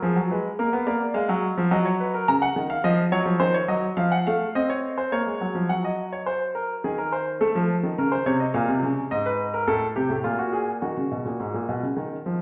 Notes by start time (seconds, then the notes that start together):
0.02 F3 G#4
0.16 F#3
0.31 G#3 B4
0.59 A#3 A#4
0.73 B3
0.87 A#3 D5
1.14 G#3 F5
1.29 F#3
1.58 F3
1.71 F#3 D#5
1.85 C#5
2.00 B4
2.14 A#4
2.28 C#3 A#5
2.42 F#5
2.56 D#3
2.70 F5
2.84 F3 D#5
3.12 F#3 C#5
3.26 F3
3.40 D#3 C5
3.54 C#5
3.68 F#3 D#5
3.97 F3 F5
4.12 F#5
4.27 A3 F5
4.55 C4 D#5
4.70 C#5
4.98 C5
5.12 A#3 C#5
5.26 G#3
5.41 F#3
5.55 F3
5.69 F#3 F#5
5.84 D#5
6.13 C#5
6.26 C5
6.55 A#4
6.84 D#3 G#4
6.98 A#4
7.12 C5
7.41 A3 A4
7.55 F3
7.83 D#3
7.98 C#3 A#4
8.12 C5
8.26 C3 C#5
8.40 D#5
8.54 A#2 F5
8.68 C3
8.83 C#3
9.11 G#2 D#5
9.26 B4
9.54 A#4
9.68 A2 A4
9.96 C3 G4
10.10 A2
10.24 A#2 F4
10.39 F#4
10.53 G#4
10.82 D#3 F#4
10.97 C#3
11.12 B2
11.26 A#2
11.40 G#2
11.54 A#2
11.69 B2
11.83 C#3
11.97 D#3
12.26 F3